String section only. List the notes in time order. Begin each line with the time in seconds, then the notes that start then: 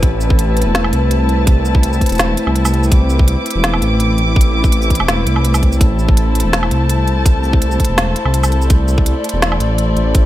Already playing: A3 E4 B4
0.03 A5
2.92 D6
5.81 A4 A5
8.70 D5